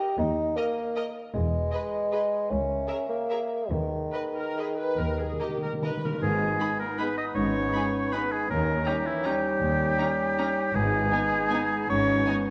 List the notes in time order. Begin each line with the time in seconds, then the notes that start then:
Already playing: G4
0.19 D#2 D#4
0.56 A#3 A#4 D#5
0.96 A#4 D#5
1.34 E1 E2 G#3 B4 D#5
1.72 G#4 B4 D#5
2.12 G#4 B4 D#5
2.50 C#2 C#4 A#4 E5
2.87 G#4 A#4 E5
3.09 A#3
3.30 G#4 A#4 E5
3.69 D#2 D#3 G#4 B4
4.13 B4 D#5
4.37 A#4
4.58 G#4 B4 D#5
4.79 B4
4.99 D#2 D#3 G4 A#4
5.08 D#3
5.15 D#3
5.20 G#4
5.24 D#3
5.32 D#3
5.40 D#3 G4 A#4 D#5
5.49 D#3
5.57 D#3
5.63 D#3 A#4
5.73 D#3
5.82 D#3 A#4 B4 D#5
5.90 D#3
5.97 D#3
6.05 D#3 A#4
6.13 D#3
6.21 G#1 G#2 G#3 B3 D#4 G#4 G#5
6.60 D#4 G#4 B5
6.79 A#3 A#4 A#5
6.98 B3 D#4 G#4 B4 B5
7.18 D#4 D#5 D#6
7.35 G#1 G#2 C#4 C#5 C#6
7.73 D#4 G#4 B5
8.12 B3 D#4 G#4 B4 B5
8.31 G#3 G#4 G#5
8.48 D#2 A#3 C#4 D#4 A#4 A#5
8.85 G3 C#4 D#4 G4 G5 A#5
9.04 E3 E4 E5
9.23 G3 C#4 D#4 G4 G5 A#5
9.62 D#2
9.98 C#4 D#4 A#5
10.38 C#4 D#4 A#5
10.74 G#1 G#2 G#3 B3 D#4 G#4 G#5
11.12 B3 D#4 G#5
11.50 B3 D#4 G#5
11.89 G#1 G#2 C#4 C#5 C#6
12.26 B3 D#4 G#5